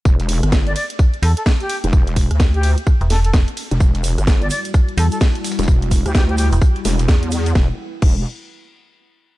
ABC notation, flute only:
X:1
M:4/4
L:1/16
Q:"Swing 16ths" 1/4=128
K:Em
V:1 name="Flute"
z4 z d d z3 A A z G z2 | z4 z G z4 A A z4 | z4 z d d z3 A A z4 | z3 G G G G z8 z |
z16 |]